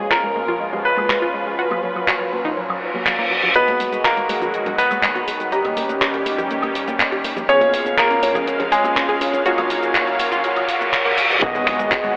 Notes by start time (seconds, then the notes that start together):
Already playing: B2 F3 G#3 C#4 F4
0.11 F4 A#4, clap
0.24 G#3
0.35 G#3, high conga
0.48 F4, low conga
0.60 G#3
0.73 G#3, low conga
0.85 B4
0.97 G#3, high conga, high woodblock
1.10 G#3, clap
1.22 F4
1.34 G#3
1.46 G#3
1.59 A#2 F#3 F#4
1.71 F#3, high conga, high woodblock
1.83 F#3
1.96 F#3, high woodblock
2.08 F#4, clap
2.20 F#3
2.33 F#3, high conga
2.44 D#4, low conga
2.57 F#3, reverse cymbal
2.70 F#3, high woodblock
2.94 F#3, high conga
3.06 F#3, clap
3.19 A#3
3.31 F#3
3.43 F#3, low conga
3.55 B2 D#3 F#3 G#3 B3 F#4 G#4 B4 D#5, closed hi-hat, riser, shaker
3.68 G#1 G#3, closed hi-hat, high conga
3.80 G#1 G#3, open hi-hat, shaker
3.92 G#1 G#3, closed hi-hat, shaker
4.05 A#3 F#4 A#4, clap, closed hi-hat, shaker
4.17 G#1 G#3, closed hi-hat
4.29 G#1 G#3 F#4 G#4 D#5, open hi-hat, high conga, shaker
4.41 G#1 F#4, closed hi-hat, low conga, shaker
4.54 G#3, closed hi-hat, shaker
4.66 G#1 G#3, closed hi-hat, low conga
4.78 G#1 B3 B4, open hi-hat, shaker
4.91 G#1 G#3, closed hi-hat, high conga, high woodblock, shaker
5.03 G#3, clap, closed hi-hat, shaker
5.15 G#1 F#4, closed hi-hat
5.28 G#1 G#3, open hi-hat, shaker
5.40 G#1 G#3, closed hi-hat, shaker
5.52 G3 C#4 G4 D#5 A#5, closed hi-hat, shaker
5.65 D#2 A#3, closed hi-hat, high conga, high woodblock
5.77 D#2 A#3, open hi-hat, shaker
5.89 D#2 A#3, closed hi-hat, shaker
6.01 G4, clap, closed hi-hat, shaker
6.14 D#2 A#3, closed hi-hat
6.26 D#2 A#3 C#4 G4 D#5 A#5, open hi-hat, high conga, shaker
6.38 D#2 G4, closed hi-hat, low conga, shaker
6.51 A#3, closed hi-hat, shaker
6.62 D#2 A#3, closed hi-hat, high woodblock
6.75 D#2, open hi-hat, shaker
6.88 D#2 A#3, closed hi-hat, high conga, shaker
7.00 A#3, clap, closed hi-hat, shaker
7.12 D#2 G4, closed hi-hat
7.24 D#2 A#3, open hi-hat, shaker
7.36 D#2 A#3, closed hi-hat, low conga, shaker
7.49 B2 C#3 G#3 B3 C#4 F4 G#4 C#5 F5, closed hi-hat, shaker
7.61 C#2 C#4, closed hi-hat, high conga
7.73 C#2 C#4, open hi-hat, shaker
7.86 C#2 C#4, closed hi-hat, shaker
7.98 A#3 G#4 A#4, clap, closed hi-hat, shaker
8.11 C#2 C#4, closed hi-hat
8.23 C#2 C#4 F4 G#4 C#5, open hi-hat, high conga, shaker
8.34 C#2 G#4, closed hi-hat, low conga, shaker
8.47 C#4, closed hi-hat, shaker
8.60 C#2 C#4, closed hi-hat, low conga
8.72 C#2 G#3 G#4, open hi-hat, shaker
8.84 C#2 C#4, closed hi-hat, high conga, high woodblock, shaker
8.96 C#4, clap, closed hi-hat, shaker
9.09 C#2 G#4, closed hi-hat
9.21 C#2 C#4, open hi-hat, shaker
9.33 C#2 C#4, closed hi-hat, shaker
9.46 F#3 A#3 F4 F#4 C#5, closed hi-hat, shaker
9.58 F#1 F#3, closed hi-hat, high conga, high woodblock
9.70 F#1 F#3, open hi-hat, shaker
9.83 F#1 F#3, closed hi-hat, shaker
9.95 F#4, clap, closed hi-hat, shaker
10.07 F#1 F#3, closed hi-hat
10.19 F#1 F#3 A#3 F4 F#4 C#5, open hi-hat, high conga, shaker
10.32 F#1 F4, closed hi-hat, low conga, shaker
10.44 F#3, closed hi-hat, reverse cymbal, shaker
10.56 F#1 F#3, closed hi-hat, high woodblock
10.69 F#1, open hi-hat, shaker
10.81 F#2 F#3, closed hi-hat, high conga, shaker
10.93 F#3, clap, closed hi-hat, shaker
11.05 F#1 A#3, closed hi-hat
11.18 C#2 F#3, open hi-hat, shaker
11.30 F#1 F#3, closed hi-hat, low conga, shaker
11.42 D#3 F#3 G#3 B3 F#4 G#4 D#5, kick, closed hi-hat, sub drop, shaker
11.55 G#1 G#3, closed hi-hat, shaker
11.67 G#1 G#3, finger snap, open hi-hat
11.79 G#1 G#3, closed hi-hat, shaker
11.92 F#4, kick, clap, shaker
12.04 G#1 G#3, closed hi-hat, shaker